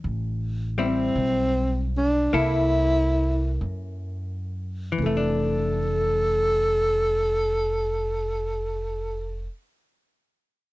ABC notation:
X:1
M:4/4
L:1/8
Q:"Swing" 1/4=42
K:F
V:1 name="Tenor saxophone"
z C2 D E2 z2 | A8 |]
V:2 name="Hollow-body jazz guitar"
z [G,CE]3 [B,EA]4 | [E,A,D]8 |]
V:3 name="Upright bass" clef=bass
A,,,2 =B,,,2 C,,2 _G,,2 | F,,,8 |]